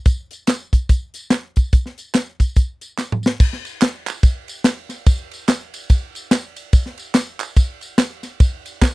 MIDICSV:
0, 0, Header, 1, 2, 480
1, 0, Start_track
1, 0, Tempo, 416956
1, 69, Time_signature, 4, 2, 24, 8
1, 10296, End_track
2, 0, Start_track
2, 0, Title_t, "Drums"
2, 64, Note_on_c, 9, 42, 95
2, 67, Note_on_c, 9, 36, 126
2, 80, Note_on_c, 9, 54, 70
2, 180, Note_off_c, 9, 42, 0
2, 182, Note_off_c, 9, 36, 0
2, 195, Note_off_c, 9, 54, 0
2, 354, Note_on_c, 9, 42, 71
2, 381, Note_on_c, 9, 54, 48
2, 469, Note_off_c, 9, 42, 0
2, 496, Note_off_c, 9, 54, 0
2, 542, Note_on_c, 9, 42, 82
2, 551, Note_on_c, 9, 38, 100
2, 553, Note_on_c, 9, 39, 99
2, 553, Note_on_c, 9, 54, 99
2, 657, Note_off_c, 9, 42, 0
2, 666, Note_off_c, 9, 38, 0
2, 668, Note_off_c, 9, 39, 0
2, 668, Note_off_c, 9, 54, 0
2, 838, Note_on_c, 9, 36, 84
2, 839, Note_on_c, 9, 42, 72
2, 845, Note_on_c, 9, 54, 58
2, 954, Note_off_c, 9, 36, 0
2, 954, Note_off_c, 9, 42, 0
2, 960, Note_off_c, 9, 54, 0
2, 1027, Note_on_c, 9, 54, 71
2, 1029, Note_on_c, 9, 36, 99
2, 1030, Note_on_c, 9, 42, 87
2, 1142, Note_off_c, 9, 54, 0
2, 1144, Note_off_c, 9, 36, 0
2, 1145, Note_off_c, 9, 42, 0
2, 1311, Note_on_c, 9, 42, 59
2, 1320, Note_on_c, 9, 54, 67
2, 1426, Note_off_c, 9, 42, 0
2, 1435, Note_off_c, 9, 54, 0
2, 1501, Note_on_c, 9, 38, 106
2, 1507, Note_on_c, 9, 42, 94
2, 1512, Note_on_c, 9, 39, 83
2, 1512, Note_on_c, 9, 54, 82
2, 1616, Note_off_c, 9, 38, 0
2, 1622, Note_off_c, 9, 42, 0
2, 1627, Note_off_c, 9, 39, 0
2, 1627, Note_off_c, 9, 54, 0
2, 1795, Note_on_c, 9, 42, 66
2, 1796, Note_on_c, 9, 54, 45
2, 1806, Note_on_c, 9, 36, 86
2, 1910, Note_off_c, 9, 42, 0
2, 1912, Note_off_c, 9, 54, 0
2, 1921, Note_off_c, 9, 36, 0
2, 1987, Note_on_c, 9, 54, 67
2, 1989, Note_on_c, 9, 42, 91
2, 1991, Note_on_c, 9, 36, 113
2, 2103, Note_off_c, 9, 54, 0
2, 2104, Note_off_c, 9, 42, 0
2, 2106, Note_off_c, 9, 36, 0
2, 2138, Note_on_c, 9, 38, 35
2, 2253, Note_off_c, 9, 38, 0
2, 2277, Note_on_c, 9, 42, 65
2, 2287, Note_on_c, 9, 54, 46
2, 2392, Note_off_c, 9, 42, 0
2, 2402, Note_off_c, 9, 54, 0
2, 2463, Note_on_c, 9, 42, 80
2, 2468, Note_on_c, 9, 39, 97
2, 2468, Note_on_c, 9, 54, 95
2, 2471, Note_on_c, 9, 38, 99
2, 2578, Note_off_c, 9, 42, 0
2, 2583, Note_off_c, 9, 39, 0
2, 2583, Note_off_c, 9, 54, 0
2, 2586, Note_off_c, 9, 38, 0
2, 2761, Note_on_c, 9, 54, 59
2, 2762, Note_on_c, 9, 36, 77
2, 2765, Note_on_c, 9, 42, 81
2, 2876, Note_off_c, 9, 54, 0
2, 2877, Note_off_c, 9, 36, 0
2, 2880, Note_off_c, 9, 42, 0
2, 2946, Note_on_c, 9, 54, 67
2, 2952, Note_on_c, 9, 36, 93
2, 2953, Note_on_c, 9, 42, 83
2, 3061, Note_off_c, 9, 54, 0
2, 3067, Note_off_c, 9, 36, 0
2, 3068, Note_off_c, 9, 42, 0
2, 3239, Note_on_c, 9, 42, 59
2, 3243, Note_on_c, 9, 54, 64
2, 3354, Note_off_c, 9, 42, 0
2, 3358, Note_off_c, 9, 54, 0
2, 3433, Note_on_c, 9, 38, 52
2, 3435, Note_on_c, 9, 39, 82
2, 3435, Note_on_c, 9, 54, 80
2, 3549, Note_off_c, 9, 38, 0
2, 3550, Note_off_c, 9, 39, 0
2, 3550, Note_off_c, 9, 54, 0
2, 3595, Note_on_c, 9, 45, 63
2, 3710, Note_off_c, 9, 45, 0
2, 3719, Note_on_c, 9, 54, 49
2, 3753, Note_on_c, 9, 38, 97
2, 3834, Note_off_c, 9, 54, 0
2, 3868, Note_off_c, 9, 38, 0
2, 3914, Note_on_c, 9, 54, 71
2, 3915, Note_on_c, 9, 36, 124
2, 3918, Note_on_c, 9, 49, 102
2, 4029, Note_off_c, 9, 54, 0
2, 4030, Note_off_c, 9, 36, 0
2, 4033, Note_off_c, 9, 49, 0
2, 4063, Note_on_c, 9, 38, 39
2, 4178, Note_off_c, 9, 38, 0
2, 4201, Note_on_c, 9, 51, 62
2, 4218, Note_on_c, 9, 54, 53
2, 4316, Note_off_c, 9, 51, 0
2, 4334, Note_off_c, 9, 54, 0
2, 4390, Note_on_c, 9, 51, 77
2, 4393, Note_on_c, 9, 39, 109
2, 4393, Note_on_c, 9, 54, 108
2, 4398, Note_on_c, 9, 38, 114
2, 4505, Note_off_c, 9, 51, 0
2, 4508, Note_off_c, 9, 39, 0
2, 4508, Note_off_c, 9, 54, 0
2, 4514, Note_off_c, 9, 38, 0
2, 4686, Note_on_c, 9, 39, 91
2, 4686, Note_on_c, 9, 54, 66
2, 4688, Note_on_c, 9, 51, 67
2, 4801, Note_off_c, 9, 39, 0
2, 4801, Note_off_c, 9, 54, 0
2, 4803, Note_off_c, 9, 51, 0
2, 4872, Note_on_c, 9, 36, 109
2, 4872, Note_on_c, 9, 51, 71
2, 4874, Note_on_c, 9, 54, 75
2, 4987, Note_off_c, 9, 36, 0
2, 4987, Note_off_c, 9, 51, 0
2, 4989, Note_off_c, 9, 54, 0
2, 5157, Note_on_c, 9, 51, 52
2, 5173, Note_on_c, 9, 54, 70
2, 5272, Note_off_c, 9, 51, 0
2, 5289, Note_off_c, 9, 54, 0
2, 5346, Note_on_c, 9, 38, 109
2, 5352, Note_on_c, 9, 51, 82
2, 5362, Note_on_c, 9, 39, 87
2, 5362, Note_on_c, 9, 54, 93
2, 5461, Note_off_c, 9, 38, 0
2, 5467, Note_off_c, 9, 51, 0
2, 5477, Note_off_c, 9, 39, 0
2, 5477, Note_off_c, 9, 54, 0
2, 5632, Note_on_c, 9, 38, 38
2, 5636, Note_on_c, 9, 51, 64
2, 5647, Note_on_c, 9, 54, 51
2, 5747, Note_off_c, 9, 38, 0
2, 5751, Note_off_c, 9, 51, 0
2, 5762, Note_off_c, 9, 54, 0
2, 5830, Note_on_c, 9, 51, 86
2, 5832, Note_on_c, 9, 36, 127
2, 5840, Note_on_c, 9, 54, 79
2, 5945, Note_off_c, 9, 51, 0
2, 5947, Note_off_c, 9, 36, 0
2, 5956, Note_off_c, 9, 54, 0
2, 6118, Note_on_c, 9, 51, 59
2, 6142, Note_on_c, 9, 54, 49
2, 6233, Note_off_c, 9, 51, 0
2, 6257, Note_off_c, 9, 54, 0
2, 6305, Note_on_c, 9, 51, 80
2, 6313, Note_on_c, 9, 38, 116
2, 6317, Note_on_c, 9, 39, 105
2, 6317, Note_on_c, 9, 54, 98
2, 6420, Note_off_c, 9, 51, 0
2, 6428, Note_off_c, 9, 38, 0
2, 6432, Note_off_c, 9, 39, 0
2, 6432, Note_off_c, 9, 54, 0
2, 6604, Note_on_c, 9, 51, 68
2, 6610, Note_on_c, 9, 54, 62
2, 6720, Note_off_c, 9, 51, 0
2, 6725, Note_off_c, 9, 54, 0
2, 6788, Note_on_c, 9, 54, 76
2, 6791, Note_on_c, 9, 36, 107
2, 6794, Note_on_c, 9, 51, 80
2, 6903, Note_off_c, 9, 54, 0
2, 6906, Note_off_c, 9, 36, 0
2, 6909, Note_off_c, 9, 51, 0
2, 7080, Note_on_c, 9, 51, 55
2, 7091, Note_on_c, 9, 54, 65
2, 7195, Note_off_c, 9, 51, 0
2, 7206, Note_off_c, 9, 54, 0
2, 7266, Note_on_c, 9, 38, 116
2, 7272, Note_on_c, 9, 51, 80
2, 7276, Note_on_c, 9, 39, 92
2, 7276, Note_on_c, 9, 54, 96
2, 7381, Note_off_c, 9, 38, 0
2, 7387, Note_off_c, 9, 51, 0
2, 7391, Note_off_c, 9, 39, 0
2, 7391, Note_off_c, 9, 54, 0
2, 7556, Note_on_c, 9, 51, 64
2, 7558, Note_on_c, 9, 54, 53
2, 7671, Note_off_c, 9, 51, 0
2, 7673, Note_off_c, 9, 54, 0
2, 7746, Note_on_c, 9, 51, 84
2, 7749, Note_on_c, 9, 36, 127
2, 7756, Note_on_c, 9, 54, 75
2, 7861, Note_off_c, 9, 51, 0
2, 7864, Note_off_c, 9, 36, 0
2, 7871, Note_off_c, 9, 54, 0
2, 7896, Note_on_c, 9, 38, 39
2, 8012, Note_off_c, 9, 38, 0
2, 8031, Note_on_c, 9, 51, 57
2, 8051, Note_on_c, 9, 54, 54
2, 8146, Note_off_c, 9, 51, 0
2, 8167, Note_off_c, 9, 54, 0
2, 8218, Note_on_c, 9, 51, 74
2, 8226, Note_on_c, 9, 38, 109
2, 8229, Note_on_c, 9, 39, 105
2, 8229, Note_on_c, 9, 54, 110
2, 8333, Note_off_c, 9, 51, 0
2, 8341, Note_off_c, 9, 38, 0
2, 8345, Note_off_c, 9, 39, 0
2, 8345, Note_off_c, 9, 54, 0
2, 8516, Note_on_c, 9, 51, 71
2, 8519, Note_on_c, 9, 39, 86
2, 8519, Note_on_c, 9, 54, 69
2, 8631, Note_off_c, 9, 51, 0
2, 8634, Note_off_c, 9, 39, 0
2, 8634, Note_off_c, 9, 54, 0
2, 8708, Note_on_c, 9, 54, 82
2, 8710, Note_on_c, 9, 36, 101
2, 8712, Note_on_c, 9, 51, 76
2, 8823, Note_off_c, 9, 54, 0
2, 8825, Note_off_c, 9, 36, 0
2, 8827, Note_off_c, 9, 51, 0
2, 8992, Note_on_c, 9, 51, 53
2, 9008, Note_on_c, 9, 54, 64
2, 9107, Note_off_c, 9, 51, 0
2, 9123, Note_off_c, 9, 54, 0
2, 9186, Note_on_c, 9, 38, 118
2, 9192, Note_on_c, 9, 51, 85
2, 9195, Note_on_c, 9, 39, 93
2, 9195, Note_on_c, 9, 54, 91
2, 9301, Note_off_c, 9, 38, 0
2, 9307, Note_off_c, 9, 51, 0
2, 9310, Note_off_c, 9, 39, 0
2, 9310, Note_off_c, 9, 54, 0
2, 9475, Note_on_c, 9, 38, 36
2, 9477, Note_on_c, 9, 54, 57
2, 9479, Note_on_c, 9, 51, 62
2, 9590, Note_off_c, 9, 38, 0
2, 9592, Note_off_c, 9, 54, 0
2, 9594, Note_off_c, 9, 51, 0
2, 9671, Note_on_c, 9, 51, 88
2, 9672, Note_on_c, 9, 36, 127
2, 9674, Note_on_c, 9, 54, 75
2, 9786, Note_off_c, 9, 51, 0
2, 9787, Note_off_c, 9, 36, 0
2, 9789, Note_off_c, 9, 54, 0
2, 9964, Note_on_c, 9, 51, 59
2, 9971, Note_on_c, 9, 54, 51
2, 10079, Note_off_c, 9, 51, 0
2, 10086, Note_off_c, 9, 54, 0
2, 10145, Note_on_c, 9, 51, 71
2, 10150, Note_on_c, 9, 36, 92
2, 10154, Note_on_c, 9, 38, 109
2, 10156, Note_on_c, 9, 39, 107
2, 10156, Note_on_c, 9, 54, 108
2, 10260, Note_off_c, 9, 51, 0
2, 10265, Note_off_c, 9, 36, 0
2, 10269, Note_off_c, 9, 38, 0
2, 10271, Note_off_c, 9, 39, 0
2, 10271, Note_off_c, 9, 54, 0
2, 10296, End_track
0, 0, End_of_file